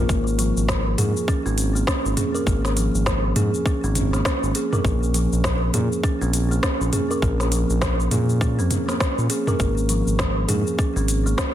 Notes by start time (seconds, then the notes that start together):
0.09 G#1 A#3, kick, shaker
0.27 shaker
0.39 F3, closed hi-hat, shaker
0.57 G#1, shaker
0.69 kick, snare, shaker
0.98 G#2 G#4, closed hi-hat, mid tom, shaker
1.17 shaker
1.28 C#4, kick, shaker
1.46 G#1 C4, shaker
1.58 closed hi-hat, shaker
1.75 A#3, shaker
1.87 C#4, kick, snare, shaker
2.05 G#1, shaker
2.17 G#4, closed hi-hat, mid tom, shaker
2.35 A#4, shaker
2.46 G#1 A#3, kick, shaker
2.65 snare, shaker
2.77 F3, closed hi-hat, shaker
2.94 G#1, shaker
3.06 kick, snare, shaker
3.36 G#2 G#4, closed hi-hat, mid tom, shaker
3.54 shaker
3.66 C#4, kick, shaker
3.83 G#1 C4, shaker
3.95 closed hi-hat, mid tom, shaker
4.13 A#3, snare, shaker
4.25 C#4, kick, snare, shaker
4.43 G#1, shaker
4.55 G#4, closed hi-hat, shaker
4.73 A#4, mid tom, shaker
4.85 A#1 A#3, kick, shaker
5.03 shaker
5.14 F3, closed hi-hat, shaker
5.32 A#1, shaker
5.44 kick, snare, shaker
5.74 A#2 G#4, closed hi-hat, mid tom, shaker
5.92 shaker
6.04 C#4, kick, shaker
6.21 A#1 C4, shaker
6.33 closed hi-hat, shaker
6.51 A#3, shaker
6.63 C#4, kick, snare, shaker
6.81 A#1, shaker
6.93 G#4, closed hi-hat, mid tom, shaker
7.11 A#4, shaker
7.22 A#1 A#3, kick, shaker
7.40 snare, shaker
7.52 F3, closed hi-hat, shaker
7.70 A#1, shaker
7.82 kick, snare, shaker
8.00 shaker
8.11 A#2 G#4, closed hi-hat, mid tom, shaker
8.29 shaker
8.41 C#4, kick, shaker
8.59 F2 C4, shaker
8.71 closed hi-hat, mid tom, shaker
8.88 A#3, snare, shaker
9.00 C#4, kick, snare, shaker
9.18 A#2, shaker
9.30 G#4, closed hi-hat, shaker
9.47 A#4, mid tom, shaker
9.60 G#1 A#3, kick, shaker
9.78 shaker
9.89 F3, closed hi-hat, shaker
10.07 G#1, shaker
10.19 kick, snare, shaker
10.49 G#2 G#4, closed hi-hat, mid tom, shaker
10.67 shaker
10.78 C#4, kick, shaker
10.96 G#1 C4, shaker
11.08 closed hi-hat, shaker
11.26 A#3, shaker
11.38 C#4, kick, snare, shaker